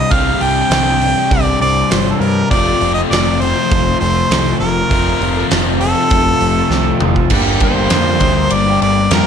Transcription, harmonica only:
0, 0, Header, 1, 2, 480
1, 0, Start_track
1, 0, Tempo, 600601
1, 86, Time_signature, 4, 2, 24, 8
1, 7408, End_track
2, 0, Start_track
2, 0, Title_t, "Harmonica"
2, 0, Program_c, 0, 22
2, 0, Note_on_c, 0, 75, 106
2, 97, Note_on_c, 0, 77, 97
2, 109, Note_off_c, 0, 75, 0
2, 339, Note_on_c, 0, 79, 109
2, 351, Note_off_c, 0, 77, 0
2, 1044, Note_on_c, 0, 74, 100
2, 1056, Note_off_c, 0, 79, 0
2, 1285, Note_off_c, 0, 74, 0
2, 1291, Note_on_c, 0, 74, 105
2, 1529, Note_on_c, 0, 72, 89
2, 1541, Note_off_c, 0, 74, 0
2, 1695, Note_on_c, 0, 69, 55
2, 1707, Note_off_c, 0, 72, 0
2, 1756, Note_on_c, 0, 70, 91
2, 1768, Note_off_c, 0, 69, 0
2, 1995, Note_off_c, 0, 70, 0
2, 2000, Note_on_c, 0, 74, 96
2, 2337, Note_off_c, 0, 74, 0
2, 2352, Note_on_c, 0, 75, 78
2, 2409, Note_off_c, 0, 75, 0
2, 2480, Note_on_c, 0, 74, 92
2, 2730, Note_on_c, 0, 72, 96
2, 2742, Note_off_c, 0, 74, 0
2, 3192, Note_off_c, 0, 72, 0
2, 3197, Note_on_c, 0, 72, 94
2, 3649, Note_off_c, 0, 72, 0
2, 3675, Note_on_c, 0, 70, 83
2, 4369, Note_off_c, 0, 70, 0
2, 4640, Note_on_c, 0, 69, 120
2, 5571, Note_off_c, 0, 69, 0
2, 6102, Note_on_c, 0, 72, 94
2, 6823, Note_on_c, 0, 74, 91
2, 6835, Note_off_c, 0, 72, 0
2, 7049, Note_off_c, 0, 74, 0
2, 7054, Note_on_c, 0, 74, 95
2, 7290, Note_on_c, 0, 70, 87
2, 7302, Note_off_c, 0, 74, 0
2, 7408, Note_off_c, 0, 70, 0
2, 7408, End_track
0, 0, End_of_file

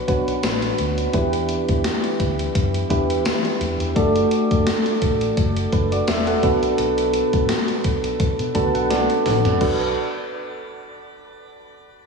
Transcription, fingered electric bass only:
0, 0, Header, 1, 2, 480
1, 0, Start_track
1, 0, Key_signature, 2, "minor"
1, 0, Tempo, 705882
1, 774, Time_signature, 4, 2, 24, 8
1, 8203, End_track
2, 0, Start_track
2, 0, Title_t, "Fingered electric bass"
2, 0, Program_c, 0, 33
2, 56, Note_on_c, 0, 35, 93
2, 235, Note_off_c, 0, 35, 0
2, 296, Note_on_c, 0, 33, 107
2, 475, Note_off_c, 0, 33, 0
2, 537, Note_on_c, 0, 38, 104
2, 716, Note_off_c, 0, 38, 0
2, 774, Note_on_c, 0, 40, 108
2, 1053, Note_off_c, 0, 40, 0
2, 1148, Note_on_c, 0, 40, 92
2, 1228, Note_off_c, 0, 40, 0
2, 1496, Note_on_c, 0, 38, 89
2, 1675, Note_off_c, 0, 38, 0
2, 1736, Note_on_c, 0, 42, 90
2, 1915, Note_off_c, 0, 42, 0
2, 1975, Note_on_c, 0, 40, 85
2, 2154, Note_off_c, 0, 40, 0
2, 2213, Note_on_c, 0, 52, 99
2, 2312, Note_off_c, 0, 52, 0
2, 2452, Note_on_c, 0, 40, 105
2, 2552, Note_off_c, 0, 40, 0
2, 2587, Note_on_c, 0, 40, 90
2, 2667, Note_off_c, 0, 40, 0
2, 2694, Note_on_c, 0, 30, 113
2, 2874, Note_off_c, 0, 30, 0
2, 3068, Note_on_c, 0, 30, 98
2, 3148, Note_off_c, 0, 30, 0
2, 3413, Note_on_c, 0, 33, 80
2, 3593, Note_off_c, 0, 33, 0
2, 3654, Note_on_c, 0, 30, 107
2, 3834, Note_off_c, 0, 30, 0
2, 3893, Note_on_c, 0, 30, 91
2, 4073, Note_off_c, 0, 30, 0
2, 4133, Note_on_c, 0, 28, 98
2, 4313, Note_off_c, 0, 28, 0
2, 4373, Note_on_c, 0, 35, 95
2, 4553, Note_off_c, 0, 35, 0
2, 4614, Note_on_c, 0, 35, 109
2, 4893, Note_off_c, 0, 35, 0
2, 4987, Note_on_c, 0, 33, 87
2, 5068, Note_off_c, 0, 33, 0
2, 5336, Note_on_c, 0, 35, 87
2, 5515, Note_off_c, 0, 35, 0
2, 5708, Note_on_c, 0, 47, 93
2, 5788, Note_off_c, 0, 47, 0
2, 5815, Note_on_c, 0, 38, 86
2, 5913, Note_off_c, 0, 38, 0
2, 5948, Note_on_c, 0, 35, 90
2, 6028, Note_off_c, 0, 35, 0
2, 6057, Note_on_c, 0, 35, 97
2, 6155, Note_off_c, 0, 35, 0
2, 6297, Note_on_c, 0, 33, 93
2, 6475, Note_off_c, 0, 33, 0
2, 6535, Note_on_c, 0, 35, 97
2, 6758, Note_off_c, 0, 35, 0
2, 8203, End_track
0, 0, End_of_file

